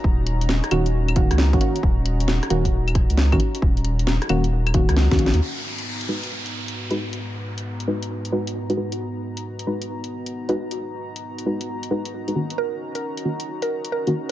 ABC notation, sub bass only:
X:1
M:4/4
L:1/16
Q:"Swing 16ths" 1/4=134
K:G#m
V:1 name="Sub bass" clef=bass
D,,,4- D,,, z D,,,4- D,,, C,,2 F,,, z2 | D,,,4- D,,, z D,,,4- D,,, C,,2 F,,, z2 | D,,,4- D,,, z D,,,4- D,,, C,,2 D,, A,,, D,, | z16 |
z16 | z16 | z16 | z16 |]